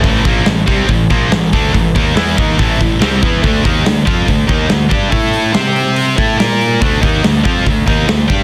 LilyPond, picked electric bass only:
\new Staff \with { instrumentName = "Picked electric bass" } { \clef bass \time 4/4 \key a \minor \tempo 4 = 142 a,,8 bes,,8 a,,8 c,8 a,,8 bes,,8 a,,8 d,8 | a,,8 dis,8 e,8 dis,8 a,,8 a,,8 c,8 e,8 | d,8 dis,8 d,8 f,8 d,8 dis,8 d,8 g,8 | a,4 c4. a,8 bes,4 |
d,8 dis,8 d,8 f,8 d,8 dis,8 d,8 g,8 | }